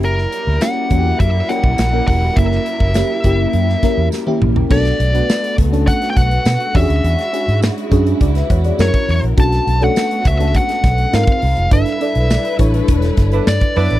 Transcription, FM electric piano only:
\new Staff \with { instrumentName = "FM electric piano" } { \time 4/4 \key b \minor \tempo 4 = 103 << { r1 | r1 | r1 | r2 <gis' d''>16 <b' e''>16 <cis'' fis''>16 <gis' d''>8 r8. |
r1 | r1 | } \\ { <ais cis' e' g'>8. r16 <ais cis' e' g'>16 r16 <ais cis' e' fis' g'>8. r16 <ais cis' e' g'>8 r16 <ais cis' e' ais'>8 r16 | <ais cis' e' g' ais'>8. r16 <ais cis' e' g'>16 r16 <ais cis' e' g'>8. r16 <ais cis' e' ais'>8 r16 <ais cis' e' g'>8 r16 | <b d' fis' a'>8 r16 <b d' fis' b'>8. r16 <cis' d' fis' a'>4. r16 <cis' d' fis' g' gis'>8~ | <cis' d' fis' g' gis'>16 r16 <cis' d' fis' gis'>8. r16 <cis' d' fis' gis'>4. <cis' e' fis' ais'>8. r16 |
<cis' d' fis' a'>8 r16 <cis' d' fis' a'>8. r16 <cis' d' fis' a'>4~ <cis' d' fis' a'>16 <bis dis' eis' ais'>8. r16 | <d' e' a' b'>16 r16 <d' e' a' d''>8. r16 <d' e' a' cis''>4. r4 | } >> }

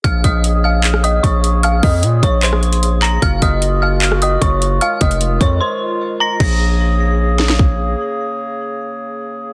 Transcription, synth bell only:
\new Staff \with { instrumentName = "Synth bell" } { \time 4/4 \key bes \minor \tempo 4 = 151 <f'' f'''>8 <ees'' ees'''>4 <f'' f'''>4 <ees'' ees'''>8 <des'' des'''>4 | <f'' f'''>8 <ees'' ees'''>4 <des'' des'''>8 <c'' c'''>4. <bes'' bes'''>8 | <f'' f'''>8 <ees'' ees'''>4 <f'' f'''>4 <ees'' ees'''>8 <des'' des'''>4 | <f'' f'''>8 <ees'' ees'''>4 <des'' des'''>8 <c'' c'''>4. <bes'' bes'''>8 |
bes'''2. r4 | r1 | }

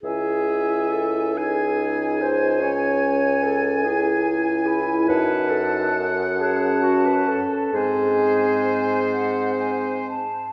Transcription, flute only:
\new Staff \with { instrumentName = "Flute" } { \time 6/8 \key cis \minor \tempo 4. = 45 gis''4. gis''4. | gis''4. gis''4. | a''4 r8 a''4. | gis''4. fis''8 gis''8 a''8 | }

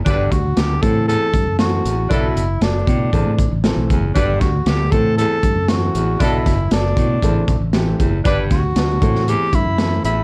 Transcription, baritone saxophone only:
\new Staff \with { instrumentName = "Baritone saxophone" } { \clef bass \time 4/4 \key a \dorian \tempo 4 = 117 g,8. r8. a,8 e,8 r4 e,8 | b,8. r8. a,8 e,8 r4 e,8 | g,8. r8. a,8 e,8 r4 e,8 | b,8. r8. a,8 e,8 r4 e,8 |
g,8. r8. a,8 e,8 r4 e,8 | }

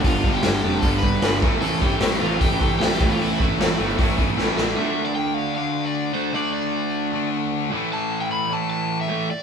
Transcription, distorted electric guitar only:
\new Staff \with { instrumentName = "Distorted electric guitar" } { \clef bass \time 4/4 \key d \dorian \tempo 4 = 152 <g, d g>8 <g, d g>8 <g, d g>8 <g, d g>8 <g, d g>8 <g, d g>8 <g, d g>8 <a, e a>8 | <a, e a>8 <a, e a>8 <a, e a>8 <a, e a>8 <a, e a>8 <a, e a>8 <a, e a>8 <a, e a>8 | <a, e a>8 <a, e a>8 <a, e a>8 <a, e a>8 <a, e a>8 <a, e a>8 <a, e a>8 <a, e a>8 | <d a d'>2 <d a d'>2 |
<d a d'>2 <d a d'>4. <a, e a>8~ | <a, e a>4. <a, e a>2 r8 | }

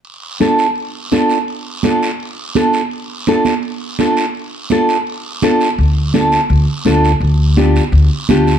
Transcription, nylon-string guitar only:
\new Staff \with { instrumentName = "Nylon-string guitar" } { \time 4/4 \key d \minor \tempo 4 = 168 r4 <d' f' a'>8 r4. <d' f' a'>8 r8 | r4 <d' f' a'>8 r4. <d' f' a'>8 r8 | r4 <d' f' a'>8 r4. <d' f' a'>8 r8 | r4 <d' f' a'>8 r4. <d' f' a'>8 r8 |
r4 <d' f' a'>8 r4. <d' f' a'>8 r8 | r4 <d' f' g'>8 r4. <d' f' g'>8 r8 | }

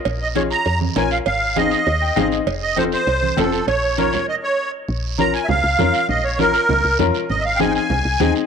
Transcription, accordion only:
\new Staff \with { instrumentName = "Accordion" } { \time 4/4 \key bes \minor \tempo 4 = 199 r8 ees''8 des''8 bes''4 r8 aes''8 f''8 | f''4 ees''2~ ees''8 r8 | r8 ees''8 c''8 c''4. a'4 | des''4 des''4 ees''8 des''4 r8 |
r4 bes''8 aes''8 <e'' f''>2 | ees''8 des''8 bes'2 r4 | ees''8 <e'' f''>8 <g'' aes''>8 <g'' aes''>2 r8 | }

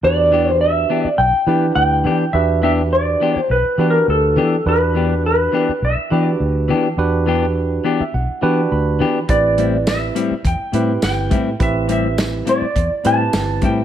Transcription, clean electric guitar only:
\new Staff \with { instrumentName = "Clean electric guitar" } { \time 4/4 \key e \minor \tempo 4 = 104 r8 <e b d' g'>8 r8 <e b d' g'>8 r8 <e b d' g'>8 r8 <e b d' g'>8 | r8 <e b d' g'>8 r8 <e b d' g'>8 r8 <e b d' g'>8 r8 <e b d' g'>8 | r8 <e b d' g'>8 r8 <e b d' g'>8 r8 <e b d' g'>8 r8 <e b d' g'>8 | r8 <e b d' g'>8 r8 <e b d' g'>8 r8 <e b d' g'>8 r8 <e b d' g'>8 |
r8 <a, g c' e'>8 r8 <a, g c' e'>8 r8 <a, g c' e'>8 r8 <a, g c' e'>8 | r8 <a, g c' e'>8 r8 <a, g c' e'>8 r8 <a, g c' e'>8 r8 <a, g c' e'>8 | }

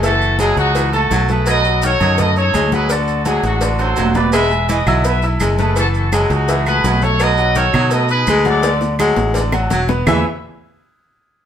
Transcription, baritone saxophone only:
\new Staff \with { instrumentName = "Baritone saxophone" } { \clef bass \time 4/4 \key e \major \tempo 4 = 168 gis4 gis2 fis4 | fis4 dis8 fis4. gis4~ | gis4 gis2 fis4 | gis4 e8 fis4. gis4~ |
gis4 gis2 fis4 | fis4 dis8 fis4. gis4~ | gis4 gis2 fis4 | e8 r2. r8 | }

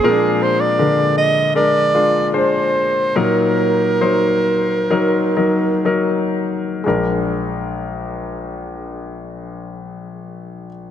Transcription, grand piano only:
<<
  \new Staff \with { instrumentName = "Grand piano" } { \time 4/4 \key ees \dorian \tempo 4 = 66 <aes c' d' bes'>4 <d aes bes'>4 <aes d' bes'>8 <aes d' f'>8 <aes d' c''>4 | <ges ees' bes'>4 <ges ees' c''>4 <ges ees' bes'>8 <ges ees' bes'>8 <ges ees' bes'>4 | <aes d' bes'>1 | }
  \new Staff \with { instrumentName = "Grand piano" } { \clef bass \time 4/4 \key ees \dorian <bes, f>4. r2 r8 | bes,4. r2 r8 | bes,,1 | }
>>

